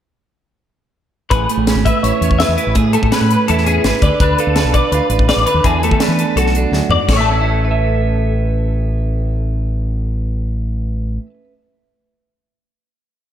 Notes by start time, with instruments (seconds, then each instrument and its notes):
1.30 fingered electric bass A1, clean electric guitar A2 G#4 B4, kick, closed hi-hat
1.49 clean electric guitar A3, closed hi-hat
1.57 fingered electric bass A1
1.67 clean electric guitar C#4, snare, closed hi-hat
1.75 fingered electric bass G#1
1.85 clean electric guitar B4 E5, kick, closed hi-hat
2.03 fingered electric bass A1, clean electric guitar E4 C#5, closed hi-hat
2.21 fingered electric bass E2, clean electric guitar C#4, closed hi-hat
2.31 kick
2.39 clean electric guitar B4 E5, snare, closed hi-hat
2.48 fingered electric bass E2
2.57 clean electric guitar E4 B4, closed hi-hat
2.67 fingered electric bass A1
2.75 clean electric guitar A2 G#4, fingered electric bass A2, kick, closed hi-hat
2.93 clean electric guitar A3 A4, closed hi-hat
3.02 fingered electric bass A2, kick
3.12 clean electric guitar C#4 B4, snare, closed hi-hat
3.21 fingered electric bass A2
3.31 clean electric guitar B4, closed hi-hat
3.48 fingered electric bass E2, clean electric guitar E4 A4, closed hi-hat
3.58 snare
3.66 clean electric guitar C#4 G#4, closed hi-hat
3.84 fingered electric bass G#1, clean electric guitar B4, snare, closed hi-hat
4.02 fingered electric bass D2, clean electric guitar D3 B4 D5, kick, closed hi-hat
4.20 fingered electric bass D2, clean electric guitar D4 B4, kick, closed hi-hat
4.38 clean electric guitar F4 A4, closed hi-hat
4.47 fingered electric bass D2
4.56 clean electric guitar B4, snare, closed hi-hat
4.65 fingered electric bass B1
4.74 clean electric guitar B4 D5, kick, closed hi-hat
4.92 fingered electric bass D2, clean electric guitar F4 B4, closed hi-hat
5.09 fingered electric bass A1, clean electric guitar B4, closed hi-hat
5.19 kick
5.29 clean electric guitar B4 D5, snare, closed hi-hat
5.36 fingered electric bass A1
5.46 clean electric guitar D3 B4, closed hi-hat
5.54 fingered electric bass D#2
5.64 fingered electric bass E2, clean electric guitar E2 G#4 A4, kick, closed hi-hat
5.83 clean electric guitar A3 A4, closed hi-hat
5.91 fingered electric bass E3, kick
6.00 clean electric guitar D4 B4, snare, closed hi-hat
6.08 fingered electric bass E3
6.19 clean electric guitar A4, closed hi-hat
6.36 fingered electric bass B1, clean electric guitar F#4 A4, closed hi-hat
6.46 snare
6.55 clean electric guitar D4, closed hi-hat
6.72 fingered electric bass D2, clean electric guitar F#2, snare
6.89 fingered electric bass E2, clean electric guitar G#2 D5, floor tom
7.08 fingered electric bass A1, clean electric guitar A2 A4, kick, snare, splash
7.13 clean electric guitar C#5
7.17 clean electric guitar A3 E5 A5
7.31 clean electric guitar C#4
7.41 clean electric guitar E4
7.65 clean electric guitar B4
7.71 clean electric guitar E5